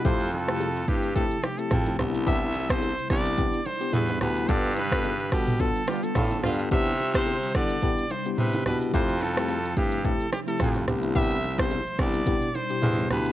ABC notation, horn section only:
X:1
M:4/4
L:1/16
Q:"Swing 16ths" 1/4=108
K:C
V:1 name="Horn section"
z16 | z16 | z8 z2 [B,DF] z [B,DF] z [B,DF]2 | z16 |
z16 | z16 |]